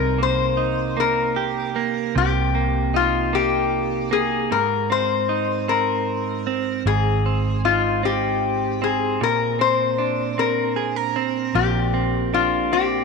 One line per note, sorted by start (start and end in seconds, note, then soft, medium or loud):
0.00 2.12 C2 medium
0.00 2.14 C3 medium
0.00 0.18 C4 soft
0.00 0.57 D#4 soft
0.00 0.22 A#4 medium
0.18 0.96 A#3 soft
0.23 0.99 C5 medium
0.57 2.94 D#4 soft
0.97 1.75 A#3 soft
0.97 2.13 A#4 medium
1.36 3.72 G4 soft
1.76 2.54 A#3 soft
2.15 4.51 C2 medium
2.15 4.51 C3 medium
2.15 2.91 G4 medium
2.55 3.32 A#3 soft
2.94 5.29 D#4 soft
2.94 3.32 F4 medium
3.33 4.10 A#3 soft
3.33 4.12 G4 medium
4.11 4.58 A#3 soft
4.11 4.52 G#4 medium
4.51 6.82 G#1 medium
4.51 6.85 G#2 medium
4.51 4.91 A#4 medium
4.90 5.68 C4 soft
4.90 5.65 C5 medium
5.29 7.64 D#4 soft
5.68 6.46 C4 soft
5.68 6.82 A#4 medium
6.47 7.25 C4 soft
6.85 9.20 G#1 medium
6.85 9.21 G#2 medium
6.85 7.61 G#4 medium
7.26 8.03 C4 soft
7.65 9.29 D#4 soft
7.65 8.01 F4 medium
8.03 8.81 C4 soft
8.03 8.83 G4 medium
8.82 9.59 C4 soft
8.82 9.23 G#4 medium
9.20 11.51 A#1 medium
9.20 11.53 A#2 medium
9.20 9.58 A#4 medium
9.59 10.37 C4 soft
9.59 10.39 C5 medium
9.98 12.32 D4 soft
10.38 11.16 C4 soft
10.38 11.59 A#4 medium
10.76 10.96 G#4 soft
10.96 13.04 A#4 soft
11.16 11.93 C4 soft
11.55 13.04 A#1 medium
11.55 13.04 A#2 medium
11.55 12.29 G4 medium
11.94 12.72 C4 soft
12.34 13.04 D4 soft
12.34 12.74 F4 medium
12.73 13.04 C4 soft
12.73 13.04 G4 medium